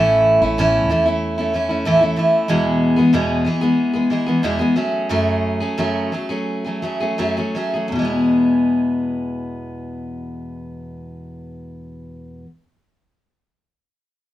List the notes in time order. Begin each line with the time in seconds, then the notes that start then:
Already playing: A1 A2 E3 A3 C#4 E4
0.41 A1 A3 C#4 E4
0.58 A2 E3 A3 C#4 E4
0.89 E2 E3 A3 C#4 E4
1.06 A3 C#4 E4
1.38 A3 C#4 E4
1.54 E3 A3 C#4 E4
1.69 A3 C#4 E4
1.85 A2 E3 A3 C#4 E4
2.01 A3 C#4 E4
2.16 E3 A3 C#4 E4
2.48 E2 B2 E3 G#3 B3 G#4
2.96 E3 G#3 B3 G#4
3.13 E2 B2 E3 G#3 B3 G#4
3.45 E3 G#3 B3 G#4
3.61 E3 G#3 B3 G#4
3.93 E3 G#3 B3 G#4
4.10 E3 G#3 B3 G#4
4.26 E3 G#3 B3 G#4
4.43 E2 B2 E3 G#3 B3 G#4
4.59 E3 G#3 B3 G#4
4.76 F#3 A3 C#4 G#4
5.09 F#2 C#3 F#3 A3 C#4 G#4
5.60 F#3 A3 C#4 G#4
5.78 F#2 C#3 F#3 A3 C#4 G#4
6.12 F#3 A3 C#4 G#4
6.29 F#3 A3 C#4 G#4
6.64 F#3 A3 C#4 G#4
6.82 F#3 A3 C#4 G#4
7.00 F#3 A3 C#4 G#4
7.18 F#2 C#3 F#3 A3 C#4 G#4
7.37 F#3 A3 C#4 G#4
7.55 F#3 A3 C#4 G#4
7.74 F#3 A3 C#4 G#4
7.88 E2
7.92 B2 E3
7.99 G#3 B3
8.05 G#4